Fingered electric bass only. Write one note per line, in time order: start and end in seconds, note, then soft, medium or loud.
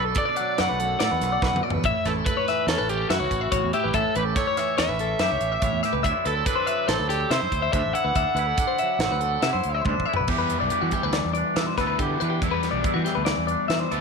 0.00 0.13 B1 loud
0.59 0.67 F#2 medium
0.71 0.94 B1 medium
1.01 1.09 A2 loud
1.12 1.19 E2 loud
1.21 1.37 B1 loud
1.42 1.50 B1 medium
1.54 1.61 F#2 medium
1.74 1.82 E2 medium
1.84 1.92 A1 medium
2.05 2.22 A1 loud
2.67 2.75 E2 medium
2.79 3.03 A1 medium
3.10 3.18 F#2 loud
3.19 3.28 C#2 medium
3.31 3.47 A1 medium
3.52 3.60 A1 medium
3.64 3.72 E2 medium
3.85 3.93 A1 medium
3.94 4.02 A1 medium
4.16 4.32 A1 loud
4.79 4.87 E2 medium
4.89 5.13 A1 medium
5.19 5.28 F#2 loud
5.32 5.40 C#2 loud
5.41 5.57 A1 medium
5.62 5.70 A1 loud
5.73 5.81 E2 medium
5.93 6.02 C#2 medium
6.04 6.13 D2 loud
6.26 6.42 D2 loud
6.88 6.97 A1 medium
7.00 7.24 D2 medium
7.30 7.39 C3 loud
7.42 7.50 F#2 medium
7.52 7.68 D2 medium
7.73 7.82 D2 loud
7.84 7.92 A1 medium
8.05 8.13 D2 medium
8.15 8.24 D2 medium
8.35 8.52 D2 loud
8.99 9.08 A1 medium
9.11 9.36 D2 medium
9.42 9.51 C3 loud
9.54 9.62 F#2 loud
9.65 9.81 D2 medium
9.85 9.94 D2 medium
9.97 10.05 A1 medium
10.19 10.27 B1 medium
10.28 10.53 E2 medium
10.62 10.70 B1 medium
10.82 10.90 E3 medium
11.03 11.20 D2 medium
11.25 11.41 E2 medium
11.56 11.73 E3 medium
11.78 11.94 D2 medium
11.98 12.15 D3 medium
12.22 12.38 E3 medium
12.42 12.67 E2 medium
12.73 12.81 B1 medium
12.95 13.04 E3 medium
13.17 13.34 D2 medium
13.38 13.55 E2 medium
13.69 13.86 E3 medium
13.91 14.01 D2 medium